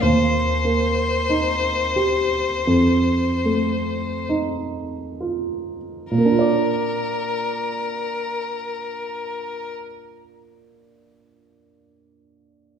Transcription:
0.03 grand piano D#2, violin C5
0.65 grand piano A#3
1.29 grand piano D#4
1.96 grand piano G4
2.67 grand piano F2
3.45 grand piano A3
4.29 grand piano D#4
5.20 grand piano F4
6.11 grand piano A#2, violin A#4
6.18 grand piano A#3
6.25 grand piano D4
6.32 grand piano F4
6.39 grand piano D5

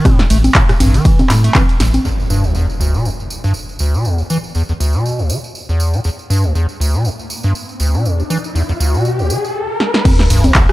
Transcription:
0.05 acid bass A2, kick, cross-stick, closed hi-hat, ride, tambourine, high conga
0.19 acid bass G2, snare, closed hi-hat, tambourine
0.30 analog synth bass A1, acid bass A3, open hi-hat, ride, tambourine
0.44 closed hi-hat, tambourine, high conga
0.55 acid bass A2, kick, clap, closed hi-hat, ride, tambourine
0.69 acid bass A2, cross-stick, closed hi-hat, tambourine
0.80 analog synth bass A1, acid bass G2, open hi-hat, ride, tambourine, high conga
0.94 acid bass E3, closed hi-hat, tambourine
1.05 kick, closed hi-hat, ride, tambourine
1.19 acid bass G2, closed hi-hat, tambourine, high conga
1.30 analog synth bass A2, snare, clap, open hi-hat, ride, tambourine
1.44 acid bass A3, closed hi-hat, tambourine
1.55 acid bass E3, kick, clap, closed hi-hat, ride, tambourine, high conga
1.69 closed hi-hat, tambourine
1.80 analog synth bass A1, acid bass A2, snare, open hi-hat, ride, tambourine
1.94 closed hi-hat, tambourine, high conga
2.05 acid bass E2, tambourine, impact
2.20 tambourine
2.30 acid bass G2, tambourine
2.44 acid bass D2, tambourine
2.55 acid bass E2, tambourine
2.70 tambourine
2.80 acid bass D2, tambourine
2.94 acid bass B2, tambourine
3.05 acid bass E2, tambourine
3.20 tambourine
3.30 tambourine
3.44 acid bass G2, tambourine
3.54 tambourine
3.69 tambourine
3.79 acid bass D2, tambourine
3.94 acid bass B2, tambourine
4.05 acid bass E2, tambourine
4.18 acid bass D2, tambourine
4.30 acid bass E3, tambourine
4.44 tambourine
4.55 acid bass E2, tambourine
4.69 acid bass E2, tambourine
4.80 acid bass D2, tambourine
4.93 acid bass B2, tambourine
5.06 tambourine
5.19 acid bass D2, tambourine
5.30 acid bass D3, tambourine
5.44 tambourine
5.55 tambourine
5.69 acid bass E2, tambourine
5.80 tambourine
5.93 acid bass B2, tambourine
6.04 acid bass E2, tambourine, riser
6.19 tambourine
6.30 acid bass G2, tambourine
6.44 acid bass D2, tambourine
6.55 acid bass E2, tambourine
6.69 tambourine
6.80 acid bass D2, tambourine
6.94 acid bass B2, tambourine
7.05 acid bass E2, tambourine
7.19 tambourine
7.30 tambourine
7.43 acid bass G2, tambourine
7.55 tambourine
7.69 tambourine
7.80 acid bass D2, tambourine
7.94 acid bass B2, tambourine
8.05 acid bass E2, tambourine
8.19 acid bass D2, tambourine
8.30 acid bass E3, tambourine
8.44 tambourine
8.55 acid bass E2, tambourine
8.69 acid bass E2, tambourine
8.80 acid bass D2, tambourine
8.94 acid bass B2, tambourine
9.05 tambourine
9.19 acid bass D2, tambourine
9.30 acid bass D3, tambourine
9.44 tambourine
9.80 snare
9.94 snare
10.05 acid bass E2, kick, closed hi-hat, crash, ride, tambourine, sub drop, high conga
10.19 snare, closed hi-hat, tambourine
10.30 analog synth bass E1, acid bass G2, open hi-hat, ride, tambourine
10.44 acid bass D2, closed hi-hat, tambourine, high conga
10.55 acid bass E2, kick, clap, closed hi-hat, ride, tambourine
10.69 cross-stick, tambourine

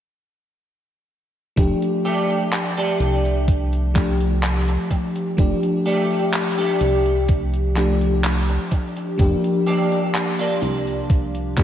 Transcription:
1.56 analog synth bass F1, fm electric piano F3 A3 D4 G4, kick, closed hi-hat
1.82 closed hi-hat
2.05 clean electric guitar A3 D4 G4
2.30 closed hi-hat
2.53 clap, closed hi-hat
2.77 clean electric guitar A3 D4 G4, closed hi-hat
3.00 analog synth bass C2, closed hi-hat
3.25 closed hi-hat
3.48 kick, closed hi-hat
3.73 closed hi-hat
3.94 fm electric piano F3 A3 D4 G4, kick, clap, closed hi-hat
4.21 closed hi-hat
4.43 clap, closed hi-hat
4.68 muted clean electric guitar stroke, closed hi-hat
4.91 muted clean electric guitar stroke, kick, closed hi-hat
5.16 muted clean electric guitar stroke, closed hi-hat
5.37 analog synth bass F1, fm electric piano F3 A3 D4 G4, kick, closed hi-hat
5.63 closed hi-hat
5.86 clean electric guitar A3 D4 G4
6.11 closed hi-hat
6.33 clap, closed hi-hat
6.58 clean electric guitar A3 D4 G4, closed hi-hat
6.81 analog synth bass C2, closed hi-hat
7.06 closed hi-hat
7.28 kick, closed hi-hat
7.54 closed hi-hat
7.75 fm electric piano F3 A3 D4 G4, clap, closed hi-hat
8.01 closed hi-hat
8.24 clap, closed hi-hat
8.49 muted clean electric guitar stroke, closed hi-hat
8.71 muted clean electric guitar stroke, kick, closed hi-hat
8.96 muted clean electric guitar stroke, closed hi-hat
9.18 analog synth bass F1, fm electric piano F3 A#3 D4 G4, kick, closed hi-hat
9.44 closed hi-hat
9.67 clean electric guitar A#3 D4 G4
9.92 closed hi-hat
10.15 clap, closed hi-hat
10.39 clean electric guitar A#3 D4 F4, closed hi-hat
10.62 analog synth bass C2, closed hi-hat
10.87 closed hi-hat
11.10 kick, closed hi-hat
11.35 closed hi-hat
11.56 fm electric piano F3 A#3 D4 G4, kick, clap, closed hi-hat

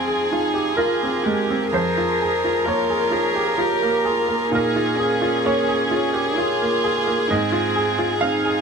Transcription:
Already playing: upright piano F2 C4 F4 G#4 F5, cello C4, violin section G#4
0.08 upright piano G#4
0.31 cello D#4, upright piano F4
0.54 upright piano G4
0.76 cello F4, upright piano F4 A#4
1.03 upright piano C4
1.23 upright piano G#3, cello G4
1.50 upright piano C4
1.72 upright piano F2 C5, cello G#4, violin section A#4
1.97 upright piano F4
2.21 upright piano G#4
2.45 upright piano F4
2.65 upright piano A#3 C#5, cello F4
2.90 upright piano G#4
3.11 upright piano F4, cello G#4
3.35 upright piano G4
3.58 upright piano F4, cello G4
3.83 upright piano A#3
4.05 cello F4, upright piano G#4
4.28 upright piano A#3
4.52 upright piano A#2 A#4, cello D#4, violin section G#4
4.76 upright piano F4
4.97 cello C#4, upright piano G#4
5.22 upright piano F4
5.45 upright piano A#3 C#5
5.68 upright piano G#4
5.91 upright piano F4
6.13 upright piano G4
6.38 cello F4, upright piano F4
6.62 upright piano A#3
6.84 upright piano G#4
7.07 upright piano A#3
7.30 upright piano G#2 D#5, cello C4
7.52 upright piano F4
7.76 upright piano G#4
7.98 upright piano F4
8.21 upright piano C4 F5, cello D#4
8.45 upright piano G#4

